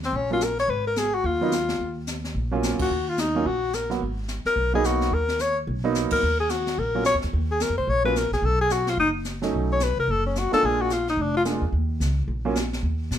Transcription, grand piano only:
0.31 F#3 A#3 C#4 F4
1.41 F#3 A#3 B3 D#4
2.51 F#3 A#3 C#4 F4
3.35 F#3 A#3 C#4 F4
3.90 F#3 A#3 B3 F#4
4.74 F#3 A#3 B3 D#4
5.84 F#3 A#3 B3 D#4
6.95 F#3 A#3 C#4 F4
8.04 F#3 A#3 C#4 F4
9.42 F#3 A3 C#4 D#4
10.52 G#3 A#3 D4 F4
11.45 G#3 A#3 D4 F4
12.45 F#3 A#3 C#4 F4

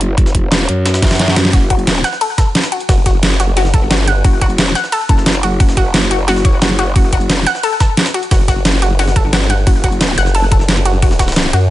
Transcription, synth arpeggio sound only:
1.53 F#4
1.70 F#4
2.04 F#5
2.21 A4
2.38 A4
2.72 F#4
2.89 F#4
3.06 F#4
3.40 F#4
3.57 F#4
3.74 A4
3.91 F#4
4.08 F#5
4.25 F#4
4.41 F#4
4.75 F#5
4.92 A4
5.09 A4
5.43 F#4
5.60 F#4
5.77 F#4
6.11 F#4
6.28 F#4
6.45 C#5
6.62 F#4
6.79 F#4
6.96 F#4
7.13 F#4
7.47 F#5
7.63 A4
7.80 A4
8.14 F#4
8.31 F#4
8.48 F#4
8.82 F#4
8.99 F#4
9.16 A4
9.33 F#4
9.50 F#5
9.67 F#4
9.84 F#4
10.18 F#5
10.35 A4
10.52 A4
10.86 F#4
11.02 F#4
11.19 F#4
11.53 F#4

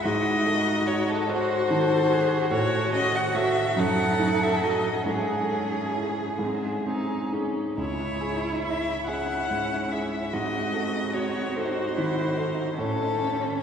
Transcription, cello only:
0.04 D#4
1.30 F#4
1.71 A4
2.11 G#4
2.51 F#4
3.77 A4
5.08 G#4
7.79 E4
9.08 C#4
10.34 C4
11.56 D#4
11.96 E4
12.36 D#4
12.77 C#4

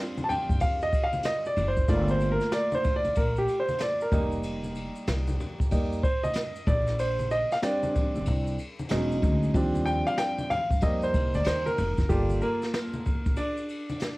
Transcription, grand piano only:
Already playing: G3 C4 D4 F4
0.24 A5
0.29 G5
0.61 F5
0.83 D#5
1.04 F5
1.25 D#5
1.47 D5
1.68 C5
1.88 A3 A#3 F4 D5
2.11 C5
2.32 A#4
2.53 D5
2.75 C5
2.96 D5
3.17 A#4
3.38 G4
3.60 C5
3.82 D5
4.02 A#4
4.12 G3 A#3 D#4
5.71 G3 A#3 D#4
6.03 C5
6.23 D#5
6.67 D5
7.00 C5
7.31 D#5
7.52 F5
7.62 G3 C4 D4 D5
8.90 F#3 G#3 C#4 D#4
9.54 F3 G3 C4 D4
9.86 G5
10.07 F5
10.18 G5
10.50 F5
10.82 G3 A#3 D#4 D#5
11.03 C5
11.35 D5
11.46 C5
11.66 A#4
12.09 G3 A#3 F4 G4 A4
12.42 A#3 A#4
13.37 D4 D5

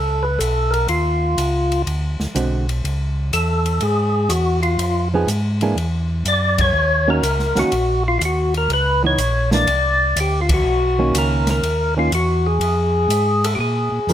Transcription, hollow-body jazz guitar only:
2.35 D3 G#3 C4 F#4
5.14 F3 B3 D#4 G#4
5.62 E3 A#3 D4 G#4
7.08 D#3 A#3 C#4 F#4
7.56 D#3 A#3 C#4 F#4
9.04 E3 B3 D#4
9.53 E3 A#3 D4
10.99 D#3 A#3 C#4
11.97 D#3 A#3 C#4
14.10 F3

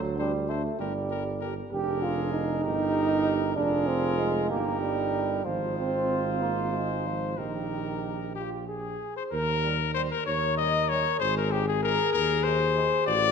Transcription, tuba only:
Already playing: D2
0.79 G1
1.72 F1
2.64 G1
3.56 F1
4.49 G1
5.45 G#1
7.38 A#1
9.32 D#2
10.27 D#2
11.20 G#1
12.14 D#2
13.07 A1

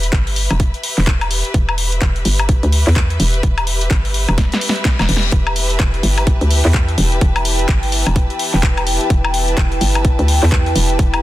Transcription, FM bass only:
Already playing: E1
0.13 G1
0.51 E1
0.98 E1
1.54 E1
2.02 E1
2.25 G1
2.63 D2
2.87 E2
3.20 E1
3.43 E1
3.91 G1
4.29 E1
5.00 E1
5.09 E1
5.32 E1
5.80 E1
6.03 G1
6.41 D2
6.65 E2
6.98 E1
7.21 E1
7.69 G1
8.07 E1
8.54 E1
9.10 E1
9.57 E1
9.81 G1
10.19 D2
10.43 E2
10.76 E1
10.99 E1

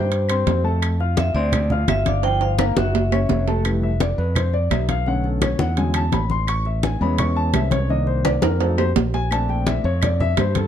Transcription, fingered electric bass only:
Already playing: G2
0.47 F2
1.34 D2
1.88 G1
2.77 F#1
3.29 F1
4.18 F2
4.70 B1
5.60 E2
6.12 A1
7.01 E2
7.54 C2
8.42 F2
8.96 A#1
9.84 F2
10.37 G2

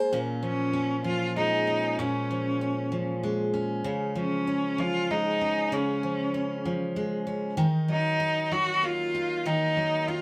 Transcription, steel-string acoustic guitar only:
Already playing: G#3 A#3 D#4 G#4 C5
0.13 A#2 C#4
0.43 F3
0.73 C#4
1.04 F3
1.36 G#3
1.67 C#4
1.99 A#2 C#4
2.31 F3
2.61 C#4
2.92 F3
3.23 G#3
3.54 C#4
3.84 C#3 C#4
4.15 F3
4.47 C#4
4.78 F3
5.10 G#3
5.41 C#4
5.72 C#3 C#4
6.03 F3
6.34 C#4
6.65 F3
6.96 G#3
7.27 C#4
7.57 D#3 D#4
7.88 F#3
8.20 D#4
8.52 F#3
8.83 A#3
9.15 D#4
9.46 D#3 D#4
9.77 F#3
10.08 D#4

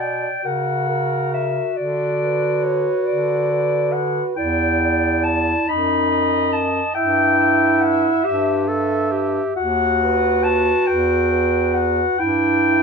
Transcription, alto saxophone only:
Already playing: D5
0.44 A#4
0.89 A#4
2.20 B4
3.51 B4
4.38 D5
4.82 D5
5.68 D#5
6.11 D#5
6.96 E5
7.39 E5
8.68 E5
10.02 B4
10.88 B4
11.31 B4
12.66 E4

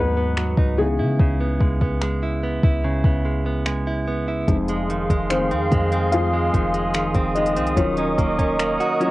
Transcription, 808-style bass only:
Already playing: D#2
0.57 C#2
1.00 C#3
1.19 C#2
1.60 C#2
2.63 C#2
3.04 C#2
4.48 F1
5.10 F1
5.52 F2
5.72 F2
6.54 F1
7.15 F1
7.57 C2
7.77 D#1
8.18 D#1

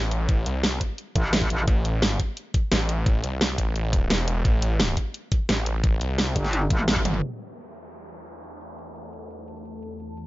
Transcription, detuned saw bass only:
Already playing: A1
0.46 C2
1.68 A1
2.72 A1
3.24 C2
3.58 A1
4.10 E1
4.45 A1
5.49 A1
6.01 C2
7.05 G1

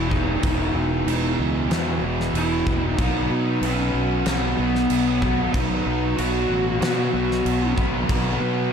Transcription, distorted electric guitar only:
Already playing: B2 E3 B3
0.11 E3
0.15 B2
0.44 E2 B2 E3
1.06 E2 B2 E3
1.69 E2 B2 E3
2.02 B2 E3
2.66 B2 E3
2.97 B2 F#3 B3
3.62 B2 F#3 B3
4.26 B2 F#3 B3
4.57 F#3 B3
5.22 F#3 B3
5.53 B2 F#3 B3
6.18 B2 F#3 B3
6.81 B2 F#3 B3
7.13 F#3 B3
7.77 F#3 B3
8.08 B2 F#3 B3

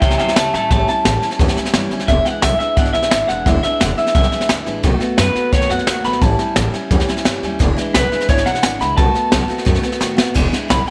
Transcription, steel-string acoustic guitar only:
0.02 A2 E3 G3 C#4 E4
0.19 G3 C#4 E4
0.36 E3 G3 C#4 E4
0.53 G3 C#4 E4
0.71 A2 E3 G3 C#4 E4
0.88 G3 C#4 E4
1.05 E3 G3 C#4 E4
1.23 G3 C#4 E4
1.41 A2 E3 G3 C#4 E4
1.57 G3 C#4 E4
1.74 E3 G3 C#4 E4
1.92 G3 C#4 E4
2.08 E2 B2 E3 G#3 D4 E4
2.25 E3 G#3 D4 E4
2.42 E3 G#3 D4 E4
2.60 E3 G#3 D4 E4
2.77 E2 B2 E3 G#3 D4 E4
2.95 E3 G#3 D4 E4
3.12 E3 G#3 D4 E4
3.29 E3 G#3 D4 E4
3.47 E2 B2 E3 G#3 D4 E4
3.63 E3 G#3 D4 E4
3.80 E3 G#3 D4 E4
3.98 E3 G#3 D4 E4
4.15 E2 B2 E3 G#3 D4 E4
4.32 E3 G#3 D4 E4
4.49 E3 G#3 D4 E4
4.66 E3 G#3 D4 E4
4.83 B2 D#3 A3 B3 F#4
5.00 A3 B3 F#4
5.17 D#3 A3 B3 F#4
5.36 A3 B3 F#4
5.52 B2 D#3 A3 B3 F#4
5.69 A3 B3 F#4
5.87 D#3 A3 B3 F#4
6.04 A3 B3 F#4
6.22 A2 E3 G3 C#4 E4
6.39 G3 C#4 E4
6.56 E3 G3 C#4 E4
6.74 G3 C#4 E4
6.91 A2 E3 G3 C#4 E4
7.08 G3 C#4 E4
7.25 E3 G3 C#4 E4
7.43 G3 C#4 E4
7.59 E2 B2 E3 G#3 D4 E4
7.76 E3 G#3 D4 E4
7.95 E3 G#3 D4 E4
8.12 E3 G#3 D4 E4
8.29 E2 B2 E3 G#3 D4 E4
8.45 E3 G#3 D4 E4
8.62 E3 G#3 D4 E4
8.79 E3 G#3 D4 E4
8.97 B2 D#3 A3 B3 F#4
9.14 A3 B3 F#4
9.31 D#3 F#4
9.48 A3 B3 F#4
9.65 B2 D#3 A3 B3 F#4
9.83 A3 B3 F#4
10.00 D#3 A3 B3 F#4
10.17 A3 B3 F#4
10.34 E2 B2 E3 G#3 D4 E4
10.52 E3 G#3 D4 E4
10.68 E3 G#3 D4 E4
10.86 D4 E4

